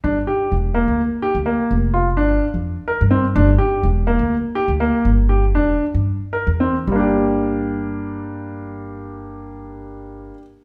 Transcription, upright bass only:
X:1
M:7/8
L:1/16
Q:1/4=121
K:Gdor
V:1 name="Upright bass" clef=bass
G,,,2 z2 E,,,3 D,,2 z2 D,,2 z | F,,,4 G,,,2 z F,,2 z2 G,,3 | G,,,2 z2 E,,,3 D,,2 z2 D,,2 z | G,,,4 E,,,2 z G,,2 z2 E,,3 |
G,,,12- G,,,2- | G,,,12- G,,,2 |]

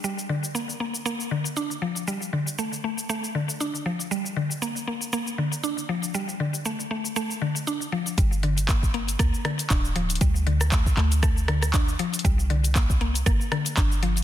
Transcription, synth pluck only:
X:1
M:4/4
L:1/16
Q:"Swing 16ths" 1/4=118
K:Gm
V:1 name="Synth pluck" clef=bass
G, z D, z B,2 B,2 B,2 D, z D2 F,2 | G, z D, z A,2 A,2 A,2 D, z D2 F,2 | G, z D, z B,2 B,2 B,2 D, z D2 F,2 | G, z D, z A,2 A,2 A,2 D, z D2 F,2 |
G, z D, z B,2 B,2 B,2 D, z D2 F,2 | G, z D, z A,2 A,2 A,2 D, z D2 F,2 | G, z D, z B,2 B,2 B,2 D, z D2 F,2 |]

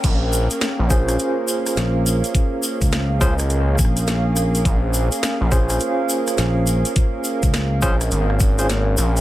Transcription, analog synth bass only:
X:1
M:4/4
L:1/16
Q:"Swing 16ths" 1/4=104
K:Bbm
V:1 name="Analog synth bass" clef=bass
B,,,3 z2 B,,,3 z8 | z6 D,,4 z6 | B,,,3 z2 B,,,3 z8 | z6 B,,,2 A,,,6 B,,,2 |]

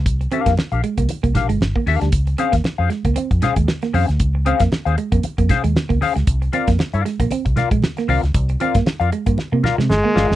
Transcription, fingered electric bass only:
X:1
M:4/4
L:1/16
Q:"Swing 16ths" 1/4=116
K:Cdor
V:1 name="Fingered electric bass" clef=bass
C,,2 z F,, z B,,, z C,, z C,, B,,, G,,, G,,, z E,, D,, | _D,,2 z E,, z F,, z D,, z F,, z E,, z2 F,, =D,, | _D,,3 F,, z E,, z F,, z F,, z E,, z D,, z D,, | C,,2 z F,, z G,, z B,,, z C,, z B,,, z2 C,, _D,, |
C,,2 z G,, z F,, z G,, z C, z C, G,,, z G,,, _G,,, |]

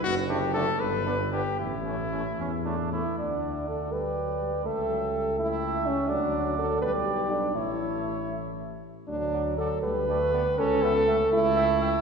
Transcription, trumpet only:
X:1
M:6/8
L:1/8
Q:3/8=80
K:D
V:1 name="Trumpet"
F G A B2 G | E4- E z | f3 g3 | g3 g3 |
f3 g3 | e4- e z | z f f z g g | z g g z g g |]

